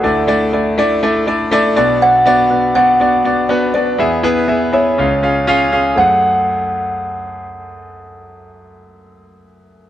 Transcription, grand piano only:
<<
  \new Staff \with { instrumentName = "Grand piano" } { \time 4/4 \key fis \minor \tempo 4 = 121 <a d' e' d''>8 <a d' e' d''>8 <a d' e' d''>8 <a d' e' d''>8 <a d' e' d''>8 <a d' e' d''>8 <a d' e' d''>8 <b d' fis' d''>8~ | <b d' fis' d''>8 <b d' fis' d''>8 <b d' fis' b'>8 <b d' fis' d''>8 <b d' fis' d''>8 <b d' fis' d''>8 <b d' fis' b'>8 <b d' fis' d''>8 | <b e' gis' e''>8 <b e' gis' b'>8 <b e' gis' e''>8 <b e' gis' e''>8 <cis' eis' gis' eis''>8 <cis' eis' gis' eis''>8 <cis' eis' gis' eis''>8 <cis' eis' gis' eis''>8 | <a gis' fis''>1~ |
<a gis' fis''>1 | }
  \new Staff \with { instrumentName = "Grand piano" } { \clef bass \time 4/4 \key fis \minor <d, d>2.~ <d, d>8 <b,, b,>8~ | <b,, b,>2.~ <b,, b,>8 r8 | <e, e>2 <cis, cis>2 | fis,1~ |
fis,1 | }
>>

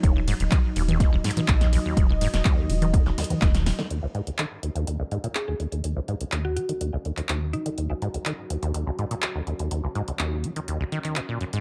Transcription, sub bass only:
\new Staff \with { instrumentName = "Sub bass" } { \clef bass \time 4/4 \key ees \minor \tempo 4 = 124 ees,,8 r16 ees,,16 r8 ees,,8 r16 ees,,16 r8 bes,,8 r8 | ees,,8 r16 ees,,16 r8 ees,,8 r16 ees,,16 r8 ees,,8 r8 | r1 | r1 |
r1 | r1 | }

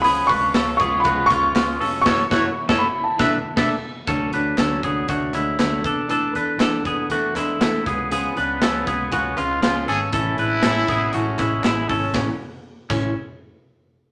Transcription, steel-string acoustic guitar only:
\new Staff \with { instrumentName = "Steel-string acoustic guitar" } { \time 4/4 \key a \major \tempo 4 = 119 <cis eis gis cis' eis' b'>8 <gis eis' b'>8 <gis cis' eis' b'>8 <gis cis' eis' b'>8 <cis eis gis cis' eis' b'>8 <gis cis' eis' b'>8 <gis cis' eis' b'>8 <gis cis' eis' b'>8 | <fis a e' fis' cis''>8 <e' fis' cis''>8 r16 <a e' fis' cis''>8 r8 <e a d' a' b'>8 r16 <a d' a' b'>8 r8 | <d fis a d' fis' cis''>8 <a d' fis' cis''>8 <d fis a d' fis' cis''>8 <a d' fis' cis''>8 <a d' fis' cis''>8 <a d' fis' cis''>8 <d fis a d' fis' cis''>8 <d' a' b'>8 | <e a d' a' b'>8 <d' a' b'>8 <e a d' a' b'>8 <d' a' b'>8 <a d' a' b'>8 <d' a' b'>8 <e a d' a' b'>8 <gis cis' eis' b'>8 |
<cis eis gis cis' eis' b'>8 <gis cis' eis' b'>8 <cis eis gis cis' eis' b'>8 <gis cis' eis' b'>8 <gis cis' eis' b'>8 <gis cis' eis' b'>8 <cis eis gis cis' eis' b'>8 <gis cis' eis' b'>8 | <a, e gis cis' e'>8 <gis cis' e'>8 <a, e gis cis' e'>8 <gis cis' e'>8 <e gis cis' e'>8 <gis cis' e'>8 <a, e gis cis' e'>8 <gis cis' e'>8 | <a, e gis cis' e'>8 r4 <a, e gis cis' e'>8 r2 | }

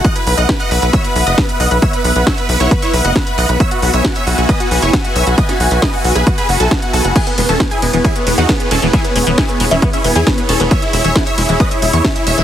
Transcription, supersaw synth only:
\new Staff \with { instrumentName = "Supersaw synth" } { \time 4/4 \key b \mixolydian \tempo 4 = 135 <dis'' fis''>16 b'16 b'16 <dis'' fis''>16 b'16 <dis'' fis''>16 b'16 b'16 <cis'' e''>16 b'16 b'16 <b' dis''>16 b'16 b'16 <dis'' fis''>16 b'16 | <cis'' e''>16 b'16 b'16 b'16 <cis'' e''>16 b'16 b'16 <e' cis''>16 b'16 <e' cis''>16 b'16 <dis'' fis''>16 b'16 b'16 <dis'' fis''>16 b'16 | <cis'' e''>16 fis'16 fis'16 <cis'' e''>16 fis'16 <cis'' e''>16 fis'16 fis'16 <b' dis''>16 fis'16 fis'16 <e' cis''>16 fis'16 fis'16 <cis'' e''>16 fis'16 | <b' dis''>16 fis'16 fis'16 fis'16 <b' dis''>16 fis'16 fis'16 <gis' b'>16 fis'16 <gis' b'>16 fis'16 <fis' a'>16 fis'16 fis'16 <fis' a'>16 fis'16 |
<e' gis'>16 b16 b16 <cis' a'>16 b16 <e' gis'>16 b16 b16 <e' gis'>16 b16 b16 <dis' fis'>16 b16 b16 <cis' a'>16 b16 | <e' gis'>16 b16 b16 b16 <e' gis'>16 b16 b16 <cis' e'>16 b16 <cis' e'>16 b16 <e' gis'>16 b16 b16 <cis' a'>16 b16 | <cis'' e''>16 e'16 e'16 <cis'' e''>16 e'16 <cis'' e''>16 e'16 e'16 <b' dis''>16 e'16 e'16 <e' cis''>16 r16 e'16 <cis'' e''>16 e'16 | }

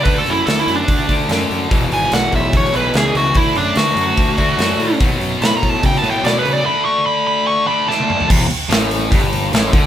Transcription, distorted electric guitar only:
\new Staff \with { instrumentName = "Distorted electric guitar" } { \clef bass \time 4/4 \key d \lydian \tempo 4 = 146 <d a d'>2~ <d a d'>8 <d a d'>8 <d a d'>4 | <e, b, e>2~ <e, b, e>8 <e, b, e>8 <e, b, e>4 | <d a d'>2~ <d a d'>8 <d a d'>8 <d a d'>4 | <b, fis b>2~ <b, fis b>8 <b, fis b>8 <b, fis b>4 |
<d a d'>2~ <d a d'>8 <d a d'>8 <d a d'>4 | e,8 r8 a,4 g,4 a,8 d8 | }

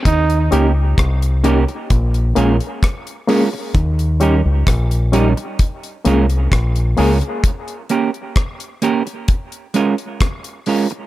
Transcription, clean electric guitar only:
\new Staff \with { instrumentName = "Clean electric guitar" } { \time 4/4 \key bes \dorian \tempo 4 = 65 r8 <bes des' g' bes'>8 r8 <bes des' g' bes'>8 r8 <aes des' f' bes'>8 r8 <aes des' f' bes'>8 | r8 <g des' ees' bes'>8 r8 <g des' ees' bes'>8 r8 <aes des' f' bes'>8 r8 <aes des' f' bes'>8 | r8 <bes des' g' bes'>8 r8 <bes des' g' bes'>8 r8 <aes des' f' bes'>8 r8 <aes des' f' bes'>8 | }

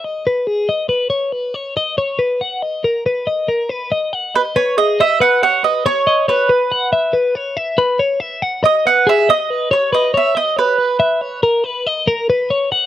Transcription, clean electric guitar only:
\new Staff \with { instrumentName = "Clean electric guitar" } { \time 5/4 \key e \lydian \tempo 4 = 140 dis''8 b'8 gis'8 dis''8 b'8 cis''8 b'8 cis''8 dis''8 cis''8 | b'8 fis''8 dis''8 ais'8 b'8 dis''8 ais'8 b'8 dis''8 fis''8 | dis''8 b'8 gis'8 dis''8 b'8 cis''8 b'8 cis''8 dis''8 cis''8 | b'8 fis''8 e''8 b'8 cis''8 e''8 b'8 cis''8 e''8 fis''8 |
dis''8 b'8 gis'8 dis''8 b'8 cis''8 b'8 cis''8 dis''8 cis''8 | b'8 e''8 cis''8 ais'8 b'8 dis''8 ais'8 b'8 cis''8 fis''8 | }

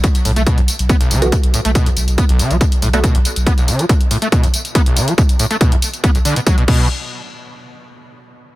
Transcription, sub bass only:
\new Staff \with { instrumentName = "Sub bass" } { \clef bass \time 4/4 \key b \minor \tempo 4 = 140 r8 b,,16 b,,16 r16 b,,16 r16 b,,16 r8 b,,16 b,,16 r16 b,,16 r16 b,,16 | r8 b,,16 b,,16 r16 b,,16 r16 b,,16 r8 b,,16 b,,16 r16 b,,16 r16 b,,16 | r1 | r1 |
r1 | }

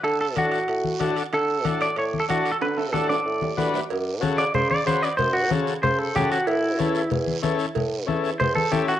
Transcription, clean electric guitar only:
\new Staff \with { instrumentName = "Clean electric guitar" } { \time 4/4 \key d \major \tempo 4 = 186 a'8 a'8 fis'2~ fis'8 r8 | a'4. d''8 \tuplet 3/2 { cis''8. r16 a'8 fis'4 a'8 } | b'8 a'8 a'8 d''2 r8 | r4. d''8 c''8 d''8 c''8 d''8 |
c''8 fis'8 r4 c''8 a'8 g'8 fis'8 | e'2 r2 | r2 c''8 a'8 g'8 fis'8 | }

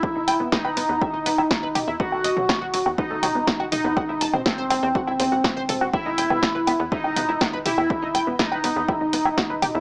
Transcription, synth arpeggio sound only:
\new Staff \with { instrumentName = "Synth arpeggio sound" } { \time 4/4 \key e \minor \tempo 4 = 122 <e' e''>16 <dis' dis''>16 <g'' g'''>16 <b b'>16 <b b'>16 <b' b''>16 <b b'>16 <b b'>16 <e' e''>16 <dis' dis''>16 <b b'>16 <e' e''>16 <fis' fis''>16 <b' b''>16 <g' g''>16 <e' e''>16 | <b b'>16 <a a'>16 <dis'' dis'''>16 <fis fis'>16 <fis fis'>16 <fis' fis''>16 <fis fis'>16 <fis fis'>16 <b b'>16 <a a'>16 <fis fis'>16 <b b'>16 <b b'>16 <fis' fis''>16 <dis' dis''>16 <b b'>16 | <fis' fis''>16 <e' e''>16 <a'' a'''>16 <c' c''>16 <c' c''>16 <c'' c'''>16 <c' c''>16 <c' c''>16 <fis' fis''>16 <e' e''>16 <c' c''>16 <fis' fis''>16 <fis' fis''>16 <c'' c'''>16 <a' a''>16 <fis' fis''>16 | <e' e''>16 <dis' dis''>16 <g'' g'''>16 <b b'>16 <e' e''>16 <b' b''>16 <b b'>16 <b b'>16 <e' e''>16 <dis' dis''>16 <b b'>16 <e' e''>16 <fis' fis''>16 <b' b''>16 <g' g''>16 <e' e''>16 |
<e' e''>16 <dis' dis''>16 <g'' g'''>16 <b b'>16 <e' e''>16 <b' b''>16 <b b'>16 <b b'>16 <e' e''>16 <dis' dis''>16 <b b'>16 <e' e''>16 <fis' fis''>16 <b' b''>16 <g' g''>16 <e' e''>16 | }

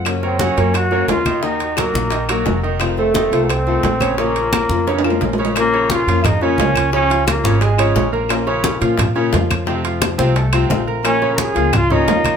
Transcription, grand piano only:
\new Staff \with { instrumentName = "Grand piano" } { \time 4/4 \key bes \minor \tempo 4 = 175 ges''8 <bes bes' des''>8 <ges ges' ges''>8 <bes bes' des''>4 <bes bes' des''>4 <ees ees' ees''>8 | <ees ees' ees''>4 <ges ges' bes'>4 <ees ees' ees''>8 <ges ges' bes'>4 <ees ees' ees''>8~ | <ees ees' ees''>8 <a a' c''>8 <ees ees' ees''>8 <a a' c''>4 <a a' c''>4 <des des' des''>8 | <des des' des''>4 <f f' bes'>4 <des des' des''>8 <f f' bes'>4 <des des' des''>8 |
r8 <des des' des''>4 <f f' f''>4 <des des' des''>8 <f f' f''>4 | <des des' des''>8 <f f' f''>4 <des des' des''>8 <aes aes' aes''>8 <des des' des''>4 <bes bes' bes''>8~ | <bes bes' bes''>8 <des des' des''>4 <f f' f''>4 <des des' des''>8 <f f' f''>4 | <c c' c''>8 <f f' f''>4 <c c' c''>8 <a a' a''>8 <c c' c''>4 <bes' bes''>8~ |
<bes' bes''>8 <des des' des''>4 <f f' f''>4 <des des' des''>8 <f f' f''>4 | }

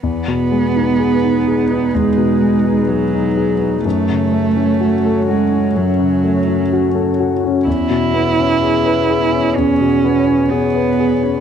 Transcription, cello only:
\new Staff \with { instrumentName = "Cello" } { \time 4/4 \key e \major \tempo 4 = 63 b2 gis4 fis4 | a4. gis8 fis4. r8 | e'2 cis'4 b4 | }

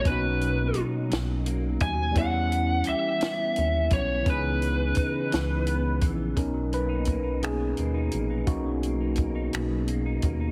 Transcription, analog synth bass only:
\new Staff \with { instrumentName = "Analog synth bass" } { \clef bass \time 6/8 \key b \major \tempo 4. = 57 b,,4 b,,8 b,,4 dis,8 | e,4 dis,8 r8 dis,8 b,,8 | cis,4 cis,8 cis,4 ais,,8 | b,,2 dis,8 ais,,8 |
b,,4. b,,4 dis,8 | }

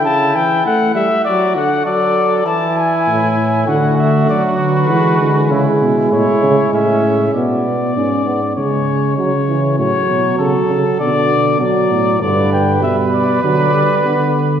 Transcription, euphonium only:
\new Staff \with { instrumentName = "Euphonium" } { \clef bass \time 4/4 \key d \major \tempo 4 = 99 cis8 e8 a8 g8 fis8 d8 fis4 | e4. r8 a4 fis4 | gis1 | b4 cis'8 b8 gis4 fis8 e8 |
fis2 d4 fis4 | \key g \lydian d4 g4 fis8 g8 b8 r8 | }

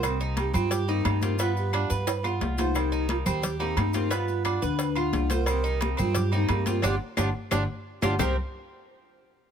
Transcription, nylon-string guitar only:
\new Staff \with { instrumentName = "Nylon-string guitar" } { \time 4/4 \key c \minor \tempo 4 = 176 <c ees bes c' g'>4 <ees bes c' g'>4 r8 <ees bes c' g'>8 <ees bes c' g'>8 <ees bes c' g'>8 | <g b f'>4 <g b f'>4 r8 <b f'>8 <g b f'>8 <b f'>8 | <c ees bes c' g'>4 <ees bes c' g'>4 r8 <ees bes c' g'>8 <ees bes c' g'>8 <ees bes c' g'>8 | <g b f'>4 <g b f'>4 r8 <b f'>8 <g b f'>8 <b f'>8 |
<c ees bes c' g'>4 <ees bes c' g'>4 r8 <ees bes c' g'>8 <ees bes c' g'>8 <ees bes c' g'>8 | <g b d'>8 r8 <g b d'>8 r8 <g b d'>8 r4 <g b d'>8 | <c ees bes c' g'>8 r2. r8 | }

